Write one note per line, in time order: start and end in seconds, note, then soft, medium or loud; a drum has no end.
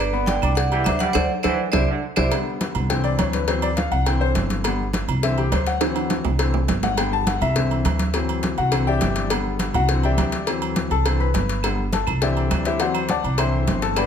0.00 0.37 G1 loud
0.00 0.25 B4 medium
0.00 0.25 D5 loud
0.13 0.37 B3 medium
0.13 0.37 B4 medium
0.13 0.37 B5 medium
0.13 high conga soft
0.26 0.51 D3 medium
0.26 0.55 D5 medium
0.26 0.54 G5 loud
0.26 cowbell medium
0.26 high conga loud
0.26 low timbale medium
0.26 low agogo medium
0.42 0.83 C2 medium
0.42 0.67 D4 medium
0.42 0.67 D5 medium
0.42 0.67 D6 medium
0.42 high conga soft
0.42 low conga medium
0.42 low agogo loud
0.42 claves medium
0.55 0.84 D5 medium
0.55 0.83 F#5 loud
0.55 cowbell loud
0.55 high conga soft
0.72 0.87 E3 medium
0.72 0.83 G4 medium
0.72 0.84 G5 medium
0.72 0.84 G6 medium
0.72 high conga soft
0.72 low agogo medium
0.84 1.13 D2 loud
0.84 1.10 D4 medium
0.84 0.93 C5 medium
0.84 1.10 D5 medium
0.84 0.91 E5 medium
0.84 1.10 D6 medium
0.84 cowbell medium
0.84 high conga loud
0.84 low timbale medium
0.84 low agogo loud
0.84 claves medium
0.99 1.23 G3 medium
0.99 1.13 D5 medium
0.99 1.12 F#5 loud
0.99 cowbell medium
0.99 high conga medium
1.13 1.26 D2 loud
1.13 1.24 A4 loud
1.13 1.23 C5 loud
1.13 1.24 C5 loud
1.13 1.24 D5 loud
1.13 1.23 F#5 loud
1.13 cowbell loud
1.13 high conga loud
1.13 high timbale loud
1.13 claves loud
1.43 1.55 D2 loud
1.43 1.67 E3 medium
1.43 1.53 A4 loud
1.43 1.53 C5 medium
1.43 1.54 C5 medium
1.43 1.53 D5 medium
1.43 1.53 F#5 medium
1.43 cowbell loud
1.43 high conga loud
1.43 high timbale loud
1.43 claves loud
1.72 1.84 C2 loud
1.72 1.82 E4 loud
1.72 1.82 G4 loud
1.72 1.82 C5 medium
1.72 1.82 C5 loud
1.72 1.82 D5 loud
1.72 1.82 E5 medium
1.72 cowbell loud
1.72 high conga loud
1.72 high timbale loud
1.72 claves loud
1.88 2.03 D3 medium
2.16 2.28 C2 loud
2.16 2.24 D3 medium
2.16 2.27 E4 medium
2.16 2.26 G4 medium
2.16 2.26 C5 loud
2.16 2.27 C5 medium
2.16 2.26 D5 loud
2.16 2.26 E5 loud
2.16 cowbell loud
2.16 high conga loud
2.16 high timbale loud
2.16 claves loud
2.31 2.87 D3 medium
2.31 2.87 G3 medium
2.31 2.87 B3 medium
2.31 cowbell loud
2.31 high conga soft
2.31 low agogo loud
2.46 high conga soft
2.61 cowbell medium
2.61 high conga loud
2.61 low timbale medium
2.61 low agogo medium
2.75 3.16 C2 medium
2.75 high conga soft
2.75 low conga medium
2.75 low agogo loud
2.89 3.45 D3 medium
2.89 3.45 E3 medium
2.89 3.45 C4 medium
2.89 3.04 G5 medium
2.89 cowbell loud
2.89 high conga soft
2.89 low conga medium
3.04 3.18 D5 medium
3.04 high conga soft
3.04 low agogo medium
3.18 3.86 D2 medium
3.18 3.33 C#5 medium
3.18 cowbell medium
3.18 high conga medium
3.18 low timbale medium
3.18 low agogo loud
3.33 3.48 B4 medium
3.33 cowbell medium
3.33 high conga medium
3.48 3.67 E3 medium
3.48 3.68 F#3 medium
3.48 3.68 C4 medium
3.48 3.62 C5 medium
3.48 cowbell loud
3.48 high conga soft
3.48 low agogo medium
3.62 3.77 D5 loud
3.62 high conga soft
3.62 low agogo loud
3.77 3.91 F5 medium
3.77 cowbell medium
3.77 high conga loud
3.77 low timbale medium
3.91 4.32 C2 medium
3.91 4.06 F#5 medium
3.91 high conga soft
3.91 low agogo medium
4.06 4.62 D3 medium
4.06 4.62 E3 medium
4.06 4.62 C4 medium
4.06 4.21 G5 medium
4.06 cowbell loud
4.06 low agogo loud
4.21 4.30 C5 loud
4.21 high conga soft
4.35 5.03 G1 medium
4.35 cowbell medium
4.35 high conga medium
4.35 low timbale medium
4.35 low agogo medium
4.50 cowbell medium
4.50 high conga medium
4.64 4.84 D3 medium
4.64 4.84 G3 soft
4.64 4.85 B3 medium
4.64 cowbell loud
4.64 low agogo loud
4.79 high conga soft
4.93 cowbell medium
4.93 high conga loud
4.93 low timbale medium
4.93 low agogo medium
5.08 5.49 C2 medium
5.08 high conga soft
5.08 low conga medium
5.08 low agogo loud
5.23 5.42 D3 medium
5.23 5.43 E3 medium
5.23 5.43 C4 medium
5.23 5.37 E5 medium
5.23 cowbell loud
5.23 high conga soft
5.38 5.52 G4 medium
5.38 high conga soft
5.38 low agogo medium
5.52 6.19 D2 medium
5.52 5.66 C5 medium
5.52 cowbell medium
5.52 high conga medium
5.52 low timbale medium
5.52 low agogo loud
5.67 6.08 F#5 medium
5.67 cowbell medium
5.81 6.23 E3 medium
5.81 6.23 F#3 medium
5.81 6.23 C4 medium
5.81 cowbell loud
5.81 high conga soft
5.81 high timbale loud
5.81 low agogo medium
5.95 high conga soft
5.95 high timbale medium
5.95 low agogo loud
6.10 cowbell medium
6.10 high conga loud
6.10 high timbale medium
6.25 6.65 C2 medium
6.25 high conga soft
6.25 low timbale loud
6.25 low agogo medium
6.38 6.58 D3 medium
6.38 6.59 E3 medium
6.38 6.59 C4 medium
6.38 cowbell loud
6.38 high conga soft
6.38 low agogo loud
6.54 high conga soft
6.54 low timbale medium
6.68 7.36 G1 loud
6.68 cowbell medium
6.68 high conga medium
6.68 low timbale medium
6.68 low agogo medium
6.83 6.97 F#5 medium
6.83 cowbell medium
6.83 high conga medium
6.83 low timbale medium
6.97 7.53 D3 medium
6.97 7.53 G3 soft
6.97 7.54 B3 medium
6.97 7.12 G5 medium
6.97 cowbell loud
6.97 high conga soft
6.97 low agogo loud
7.12 7.27 A5 loud
7.12 high conga soft
7.27 7.41 F#5 medium
7.27 cowbell medium
7.27 high conga loud
7.27 low timbale medium
7.27 low agogo medium
7.41 7.82 C2 medium
7.41 8.10 E5 medium
7.41 high conga soft
7.41 low conga medium
7.41 low agogo loud
7.56 7.97 D3 medium
7.56 7.98 E3 medium
7.56 7.98 C4 medium
7.56 cowbell loud
7.56 high conga soft
7.56 low conga medium
7.71 high conga soft
7.71 low agogo medium
7.85 8.52 D2 loud
7.85 cowbell medium
7.85 high conga medium
7.85 low timbale medium
7.85 low agogo loud
7.99 cowbell medium
7.99 high conga medium
8.14 8.55 E3 medium
8.14 8.56 F#3 medium
8.14 8.56 C4 medium
8.14 cowbell loud
8.14 low agogo medium
8.29 high conga soft
8.29 low agogo loud
8.43 cowbell medium
8.43 high conga loud
8.43 low timbale medium
8.58 8.98 C2 medium
8.58 8.85 F#4 medium
8.58 8.85 F#5 medium
8.58 high conga soft
8.58 low agogo medium
8.72 9.28 D3 medium
8.72 9.28 E3 medium
8.72 9.28 C4 medium
8.72 cowbell loud
8.72 high conga soft
8.72 low agogo loud
8.87 9.28 G4 medium
8.87 9.28 D5 medium
8.87 9.28 E5 medium
8.87 9.28 G5 loud
8.87 high conga soft
9.01 9.69 G1 medium
9.01 cowbell medium
9.01 high conga loud
9.01 low timbale medium
9.01 low agogo medium
9.16 cowbell medium
9.30 9.72 D3 medium
9.30 9.72 G3 soft
9.30 9.73 B3 medium
9.30 cowbell loud
9.30 low agogo loud
9.45 high conga soft
9.59 cowbell medium
9.59 high conga medium
9.59 low timbale medium
9.59 low agogo medium
9.74 10.15 C2 loud
9.74 10.02 F#4 medium
9.74 10.02 F#5 loud
9.74 high conga soft
9.74 low conga medium
9.74 low agogo loud
9.89 10.31 D3 medium
9.89 10.31 E3 medium
9.89 10.31 C4 medium
9.89 cowbell loud
9.89 high conga soft
10.03 10.45 G4 medium
10.03 10.45 D5 medium
10.03 10.45 E5 medium
10.03 10.45 G5 medium
10.03 high conga soft
10.03 low agogo medium
10.17 10.85 D2 loud
10.17 cowbell medium
10.17 high conga loud
10.17 low timbale medium
10.17 low agogo loud
10.32 cowbell medium
10.47 10.89 E3 medium
10.47 10.89 F#3 medium
10.47 10.89 C4 medium
10.47 cowbell loud
10.47 high conga soft
10.47 low agogo medium
10.62 high conga soft
10.62 low agogo loud
10.76 cowbell medium
10.76 high conga loud
10.76 low timbale medium
10.90 11.31 C2 medium
10.90 11.18 A4 medium
10.90 11.18 A5 medium
10.90 high conga soft
10.90 low agogo medium
11.05 11.25 D3 medium
11.05 11.25 E3 medium
11.05 11.25 C4 medium
11.05 cowbell loud
11.05 high conga soft
11.05 low agogo loud
11.20 11.61 B4 medium
11.20 11.61 B5 medium
11.20 high conga soft
11.34 12.02 G1 loud
11.34 cowbell medium
11.34 high conga medium
11.34 low timbale medium
11.34 low agogo medium
11.49 cowbell medium
11.63 11.83 D3 medium
11.63 11.83 G3 soft
11.63 11.84 B3 medium
11.63 cowbell loud
11.63 high conga soft
11.63 low agogo loud
11.63 claves medium
11.78 high conga soft
11.93 12.20 A4 medium
11.93 12.20 A5 medium
11.93 cowbell medium
11.93 high conga loud
11.93 low timbale medium
11.93 low agogo medium
12.07 12.48 C2 medium
12.07 high conga soft
12.07 low conga medium
12.07 low agogo loud
12.07 claves medium
12.21 12.77 D3 medium
12.21 12.77 E3 medium
12.21 12.78 C4 medium
12.21 12.63 G4 medium
12.21 12.63 D5 medium
12.21 12.63 E5 medium
12.21 12.62 G5 medium
12.21 cowbell loud
12.21 high conga soft
12.36 high conga soft
12.36 low agogo medium
12.51 13.18 D2 medium
12.51 cowbell medium
12.51 high conga medium
12.51 low timbale medium
12.51 low agogo loud
12.51 claves medium
12.65 12.80 E4 medium
12.65 12.80 G4 medium
12.65 12.79 C5 medium
12.65 12.80 E5 medium
12.65 cowbell medium
12.80 12.99 E3 medium
12.80 13.00 F#3 medium
12.80 13.00 C4 medium
12.80 13.08 F#4 medium
12.80 13.08 C5 medium
12.80 13.08 D5 medium
12.80 13.08 F#5 medium
12.80 cowbell loud
12.80 low agogo medium
12.94 high conga soft
12.94 low agogo loud
12.94 claves medium
13.09 13.37 D5 medium
13.09 13.37 F#5 medium
13.09 13.37 A5 medium
13.09 13.37 D6 medium
13.09 cowbell medium
13.09 high conga loud
13.09 low timbale medium
13.24 13.64 C2 loud
13.24 high conga soft
13.24 low agogo medium
13.38 13.93 D3 medium
13.38 13.94 E3 medium
13.38 13.94 C4 medium
13.38 13.79 C5 medium
13.38 13.79 E5 medium
13.38 13.79 G5 medium
13.38 13.79 C6 medium
13.38 cowbell loud
13.38 high conga soft
13.38 low agogo loud
13.38 claves medium
13.53 high conga soft
13.67 14.06 G1 medium
13.67 cowbell medium
13.67 high conga loud
13.67 low timbale medium
13.67 low agogo medium
13.82 13.96 A4 medium
13.82 13.96 A5 medium
13.82 cowbell medium
13.96 14.06 D3 medium
13.96 14.06 G3 medium
13.96 14.06 B3 medium
13.96 14.06 B4 medium
13.96 14.06 D5 medium
13.96 14.06 G5 medium
13.96 14.06 B5 loud
13.96 cowbell loud
13.96 high conga soft
13.96 low agogo loud
13.96 claves medium